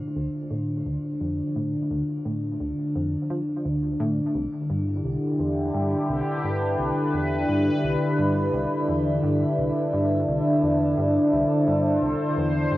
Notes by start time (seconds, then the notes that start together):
Already playing: D3 D4 E4 F4 C5
0.16 D2
0.51 A2
0.86 D2
1.21 F2
1.56 A2
1.90 D2
2.25 A2
2.60 D2
2.95 F2
3.30 F3
3.65 D2
4.00 A2
4.35 C2 D3
4.50 E4
4.60 G4
4.70 G2
4.95 D4
5.04 C2
5.39 E2
5.74 G2
5.84 B4
6.09 C2
6.44 G2
6.79 C2
7.14 E2
7.49 G2
7.83 C2
8.18 G2
8.53 C2
8.88 E2
9.23 G2
9.58 C2
9.93 G2
10.28 C2
10.34 A4
10.63 E2
10.98 G2
11.23 C5
11.32 C2
11.67 G2
12.02 C2
12.37 E2
12.72 G2